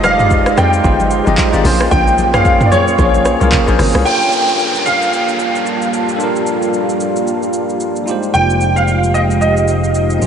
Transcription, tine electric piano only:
0.00 0.17 G#3 medium
0.00 0.18 D#4 medium
0.00 0.19 F4 medium
0.00 0.20 G4 medium
0.00 0.86 C5 medium
0.17 0.50 G#3 medium
0.17 0.50 D#4 medium
0.17 0.51 F4 medium
0.17 0.51 G4 medium
0.17 0.52 D5 medium
0.55 0.79 G#3 medium
0.55 0.79 D#4 medium
0.55 0.80 F4 medium
0.55 0.80 G4 medium
0.55 0.81 D5 medium
0.82 1.16 G#3 medium
0.82 1.17 D#4 medium
0.82 1.17 F4 medium
0.82 1.18 G4 medium
0.82 1.18 C5 medium
1.25 1.46 G#3 medium
1.25 1.47 D#4 medium
1.25 1.47 F4 medium
1.25 1.48 G4 medium
1.25 1.48 D#5 loud
1.51 1.64 G#3 medium
1.51 1.64 D#4 medium
1.51 1.63 F4 medium
1.51 1.65 G4 medium
1.51 1.66 D5 loud
1.63 2.17 A#3 medium
1.63 2.18 C#4 medium
1.63 2.18 F4 medium
1.63 2.19 G#4 medium
1.63 2.19 C5 loud
2.32 2.64 A#3 medium
2.32 2.65 C#4 medium
2.32 2.65 F4 medium
2.32 2.66 G#4 medium
2.32 2.66 C#5 medium
2.70 2.93 A#3 medium
2.70 2.94 C#4 medium
2.70 2.94 F4 medium
2.70 2.95 G#4 medium
2.70 2.95 C#5 medium
2.97 3.31 A#3 medium
2.97 3.31 C#4 medium
2.97 3.32 F4 medium
2.97 3.32 G#4 medium
2.97 3.33 C#5 medium
3.39 3.61 A#3 medium
3.39 3.61 C#4 medium
3.39 3.62 F4 medium
3.39 3.62 G#4 medium
3.39 3.63 A#4 loud
3.66 3.98 A#3 medium
3.66 3.99 C#4 medium
3.66 3.99 F4 medium
3.66 3.99 G#4 medium
3.66 4.00 C5 loud
4.02 6.15 D4 medium
4.02 6.16 F4 medium
4.02 6.14 A4 medium
4.07 6.17 G4 medium
4.07 6.18 A#4 medium
6.16 8.03 D4 medium
6.16 8.04 F4 medium
6.16 8.02 A4 medium
6.22 8.05 G4 medium
6.22 8.06 A#4 medium
8.04 8.13 G3 medium
8.04 10.17 D#4 medium
8.04 10.18 F4 medium
8.09 10.19 G#3 medium
8.09 10.19 G4 medium
8.09 10.20 C5 medium
10.18 10.27 A#3 medium
10.18 10.27 C#4 medium
10.18 10.27 F4 medium

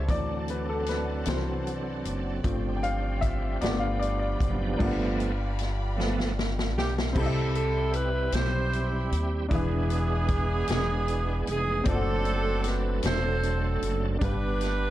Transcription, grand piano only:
0.00 0.10 G3 soft
0.00 0.10 B3 medium
0.00 0.10 C5 medium
0.00 0.10 D5 medium
0.00 0.10 E5 medium
0.00 0.11 G5 medium
0.08 1.22 E3 medium
0.08 1.23 F#3 soft
0.08 1.23 C4 medium
0.08 0.50 D5 medium
0.50 0.69 B4 medium
0.69 0.89 A4 medium
0.89 1.29 B4 medium
1.26 1.62 E3 soft
1.26 1.62 F#3 soft
1.26 1.62 C4 medium
1.26 1.37 C5 medium
2.44 3.58 F3 medium
2.44 3.58 A3 soft
2.44 3.58 C4 medium
2.77 2.84 G5 medium
2.83 2.92 F5 loud
3.21 3.59 E5 medium
3.61 4.76 F3 medium
3.61 4.76 A3 medium
3.61 4.76 B3 medium
3.61 3.82 D5 medium
3.80 4.01 F5 medium
4.00 4.18 D5 medium
4.20 4.57 D5 medium
4.76 5.93 G2 medium
4.76 4.85 A#3 medium
4.76 7.10 D4 medium
4.76 7.11 F4 medium
4.81 7.13 B3 medium
4.81 7.12 G4 medium
4.81 7.13 D5 medium
7.13 8.30 C3 medium
7.13 9.46 C4 medium
7.13 9.46 E4 medium
7.13 9.47 G4 medium
7.18 7.24 D#5 medium
7.18 9.48 B5 medium
7.26 9.52 E5 medium
9.49 10.65 E3 medium
9.49 11.81 D4 medium
9.49 11.82 E4 medium
9.49 11.82 G#4 medium
9.53 11.83 B4 medium
9.53 11.84 E5 medium
11.84 14.16 C4 medium
11.84 14.17 D4 medium
11.84 11.93 F4 medium
11.88 14.18 A4 medium
11.88 14.19 D5 medium
11.93 14.21 F#4 medium
14.19 14.90 G2 medium
14.19 14.90 D4 medium
14.19 14.90 G4 medium
14.25 14.90 B4 medium

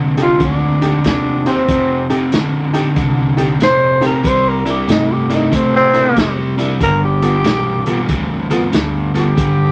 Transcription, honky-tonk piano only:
0.17 0.29 D#4 medium
0.17 0.29 G4 medium
0.17 0.29 A4 medium
0.82 0.93 D#4 medium
0.82 0.93 G4 medium
0.82 0.93 A4 medium
1.46 1.57 D#4 medium
1.46 1.57 G4 medium
1.46 1.57 C5 medium
2.10 2.21 D#4 medium
2.10 2.21 G4 medium
2.10 2.21 A4 medium
2.73 2.85 D#4 medium
2.73 2.85 G4 medium
2.73 2.85 A4 medium
3.37 3.49 D#4 medium
3.37 3.49 G4 medium
3.37 3.49 A4 loud
4.01 4.13 D#4 medium
4.01 4.13 G4 medium
4.01 4.13 A4 medium
4.65 4.77 D4 medium
4.65 4.77 E4 medium
4.65 4.77 A#4 medium
5.29 5.41 D4 medium
5.29 5.41 E4 medium
5.29 5.41 A#4 medium
5.93 6.05 D4 medium
5.93 6.05 E4 medium
5.93 6.05 A#4 medium
6.58 6.69 D4 medium
6.58 6.70 E4 medium
6.58 6.70 A#4 medium
7.22 7.34 B3 medium
7.22 7.34 F4 medium
7.22 7.34 A4 medium
7.86 7.98 B3 medium
7.86 7.98 F4 medium
7.86 7.98 A4 medium
8.50 8.62 B3 medium
8.50 8.62 F4 medium
8.50 8.62 A4 loud
9.15 9.26 B3 medium
9.15 9.26 F4 medium
9.15 9.26 A4 medium

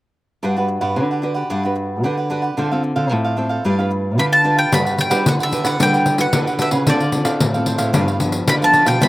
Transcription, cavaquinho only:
0.43 0.55 D4 medium
0.43 0.55 G4 medium
0.43 0.56 B4 medium
0.43 0.55 F#5 medium
0.56 0.67 G4 soft
0.56 0.68 B4 soft
0.56 0.68 F#5 soft
0.68 muted cavaquinho stroke soft
0.81 1.09 G4 soft
0.81 1.08 B4 medium
0.81 1.08 F#5 medium
1.11 1.21 G4 soft
1.11 1.22 B4 soft
1.11 1.22 F#5 soft
1.22 1.35 D4 soft
1.22 1.35 G4 soft
1.22 1.34 B4 soft
1.22 1.33 F#5 soft
1.34 1.49 G4 medium
1.34 1.48 B4 soft
1.34 1.48 F#5 medium
1.50 1.62 D4 medium
1.50 1.63 G4 medium
1.50 1.63 B4 medium
1.50 1.62 F#5 medium
1.63 1.75 G4 soft
1.63 1.75 B4 soft
1.63 1.75 F#5 soft
1.75 muted cavaquinho stroke soft
2.03 2.16 D4 medium
2.03 2.16 G4 medium
2.03 2.17 B4 medium
2.03 2.16 F#5 medium
2.17 2.29 G4 soft
2.17 2.29 B4 soft
2.17 2.30 F#5 soft
2.30 2.43 D4 medium
2.30 2.43 G4 medium
2.30 2.42 B4 medium
2.30 2.41 F#5 medium
2.42 2.57 G4 soft
2.42 2.56 B4 soft
2.42 2.55 F#5 soft
2.57 2.70 D4 medium
2.57 2.70 A4 medium
2.57 2.71 C5 medium
2.57 2.70 F5 medium
2.71 2.83 A4 soft
2.71 2.83 C5 soft
2.71 2.83 F5 soft
2.83 muted cavaquinho stroke soft
2.96 3.24 A4 medium
2.96 3.23 C5 medium
2.96 3.23 F5 medium
3.24 3.36 A4 soft
3.24 3.37 C5 soft
3.24 3.37 F5 medium
3.37 3.50 D4 soft
3.37 3.50 A4 soft
3.37 3.49 C5 soft
3.37 3.48 F5 soft
3.49 3.64 A4 soft
3.49 3.63 C5 medium
3.49 3.63 F5 medium
3.64 3.77 D4 medium
3.64 3.78 G4 medium
3.64 3.78 B4 medium
3.64 3.77 F5 medium
3.79 3.90 G4 soft
3.79 3.90 B4 soft
3.79 3.90 F5 soft
3.91 muted cavaquinho stroke soft
4.18 4.31 D4 medium
4.18 4.31 G4 medium
4.18 4.31 B4 medium
4.18 4.31 F5 medium
4.32 4.43 G4 soft
4.32 4.44 B4 soft
4.32 4.45 F5 soft
4.44 4.57 D4 medium
4.44 4.57 G4 medium
4.44 4.56 B4 medium
4.44 4.55 F5 medium
4.56 4.71 G4 soft
4.56 4.71 B4 soft
4.56 4.70 F5 soft
4.72 4.85 D4 medium
4.72 4.85 G4 medium
4.72 4.85 B4 medium
4.72 4.84 F#5 medium
4.85 4.97 G4 soft
4.85 4.97 B4 soft
4.85 4.97 F#5 soft
4.98 muted cavaquinho stroke soft
5.10 5.38 G4 medium
5.10 5.38 B4 medium
5.10 5.37 F#5 medium
5.39 5.51 G4 soft
5.39 5.51 B4 soft
5.39 5.52 F#5 soft
5.51 5.65 D4 soft
5.51 5.65 G4 soft
5.51 5.63 B4 soft
5.51 5.62 F#5 medium
5.64 5.78 G4 medium
5.64 5.78 B4 medium
5.64 5.77 F#5 medium
5.79 5.92 D4 medium
5.79 5.92 G4 medium
5.79 5.92 B4 medium
5.79 5.92 F#5 medium
5.93 6.05 G4 soft
5.93 6.05 B4 soft
5.93 6.05 F#5 soft
6.05 muted cavaquinho stroke soft
6.33 6.45 D4 medium
6.33 6.46 G4 medium
6.33 6.46 B4 medium
6.33 6.46 F#5 medium
6.47 6.58 G4 soft
6.47 6.59 B4 soft
6.47 6.59 F#5 medium
6.59 6.72 D4 medium
6.59 6.72 G4 medium
6.59 6.72 B4 medium
6.59 6.71 F#5 medium
6.72 6.86 G4 soft
6.72 6.86 B4 soft
6.72 6.85 F#5 soft
6.87 6.99 D4 medium
6.87 7.00 A4 medium
6.87 7.00 C5 medium
6.87 7.00 F5 medium
7.01 7.12 A4 soft
7.01 7.13 C5 soft
7.01 7.13 F5 soft
7.13 muted cavaquinho stroke soft
7.25 7.53 A4 medium
7.25 7.52 C5 medium
7.25 7.52 F5 medium
7.54 7.65 A4 soft
7.54 7.66 C5 soft
7.54 7.66 F5 medium
7.66 7.79 D4 soft
7.66 7.79 A4 soft
7.66 7.78 C5 soft
7.66 7.77 F5 medium
7.78 7.93 A4 medium
7.78 7.92 C5 medium
7.78 7.92 F5 medium
7.93 8.06 D4 medium
7.93 8.06 G4 medium
7.93 8.06 B4 medium
7.93 8.06 F5 medium
8.07 8.18 G4 soft
8.07 8.19 B4 soft
8.07 8.19 F5 soft
8.20 muted cavaquinho stroke soft
8.47 8.60 D4 medium
8.47 8.60 G4 medium
8.47 8.61 B4 medium
8.47 8.61 F5 medium
8.62 8.72 G4 soft
8.62 8.73 B4 soft
8.62 8.74 F5 soft
8.73 8.86 D4 medium
8.73 8.86 G4 medium
8.73 8.85 B4 medium
8.73 8.84 F5 medium
8.85 9.00 G4 soft
8.85 9.00 B4 medium
8.85 8.99 F5 soft
9.00 9.08 E4 medium
9.00 9.08 B4 medium
9.00 9.08 C5 medium
9.00 9.08 G5 medium

